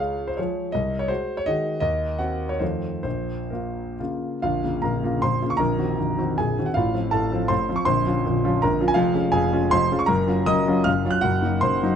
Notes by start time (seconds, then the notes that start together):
Already playing: C#2 C#5 F5
0.00 G#3 G#4
0.28 C5
0.37 F3 G#3 G#4 C#5
0.72 C2 D#5
0.99 C#5
1.08 G#3 F#4 C5
1.37 C#5
1.46 D#3 G#3 F#4 D#5
1.80 D#2 D#5
2.18 C4 F#4 F#5
2.49 C#5
2.59 F2 D#3 A3 F4 C5
3.03 A#1 C5
3.50 A#3 F4 A#4
4.00 C#3 A#3 F4
4.42 A#0 A#1 F4 F5
4.64 C#3 A#3 F4
4.82 A#0 A#1 A#4 A#5
5.03 C#3 A#3 F4
5.22 A#0 A#1 C5 C6
5.42 C#3 A#3 F4
5.50 C#6
5.57 A#0 A#1 A#4 A#5
5.78 D#3 C4 F#4
5.97 A#0 A#1
6.18 D#3 C4 F#4
6.38 A#0 A#1 G#4 G#5
6.59 D#3 C4 F#4
6.66 F#5
6.74 A1 A2 F4 F5
6.94 F3 C4 F4
7.11 A1 A2 A4 A5
7.32 F3 C4 F4
7.48 A1 A2 C5 C6
7.69 F3 C4 F4
7.76 C#6
7.85 A#0 A#1 C5 C6
8.05 F3 C#4 F4
8.26 A#0 A#1
8.44 F3 C#4 F4
8.62 A#0 A#1 A#4 A#5
8.81 F3 C#4 F4
8.88 G#5
8.94 F1 F2 F4 F5
9.13 G#3 C#4 F4
9.32 F1 F2 G#4 G#5
9.53 G#3 C#4 F4
9.71 F1 F2 C5 C6
9.91 G#3 C#4 F4
9.99 C#6
10.06 F#1 F#2 A#4 A#5
10.27 F#3 C#4 F4
10.46 F#1 F#2 D#5 D#6
10.68 F#3 C#4 F4
10.84 F#1 F#2 F5 F6
11.05 F#3 C#4 F4
11.11 F#6
11.21 F#1 F#2 F#4 F#5
11.42 F#3 A#3 D#4
11.61 F#1 F#2 C5 C6
11.82 F#3 A#3 D#4